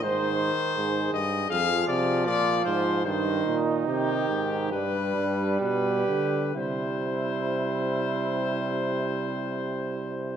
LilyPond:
<<
  \new Staff \with { instrumentName = "Trumpet" } { \time 4/4 \key c \minor \tempo 4 = 69 c''4. ees''8 f''8 d''8 d''8 c''8 | c''8 r8 g'4 b'4 b'4 | c''1 | }
  \new Staff \with { instrumentName = "Flugelhorn" } { \time 4/4 \key c \minor c''8 r8 aes'4 aes'4 f'4 | ees'2 d'4 g'4 | e'1 | }
  \new Staff \with { instrumentName = "Trombone" } { \clef bass \time 4/4 \key c \minor ees4. r8 f2 | ees4 ees4 g2 | g1 | }
  \new Staff \with { instrumentName = "Euphonium" } { \clef bass \time 4/4 \key c \minor aes,8 r8 aes,8 g,8 f,8 c8 bes,8 aes,8 | g,8 bes,8 c8 aes,8 g,8 g,8 b,8 d8 | c1 | }
>>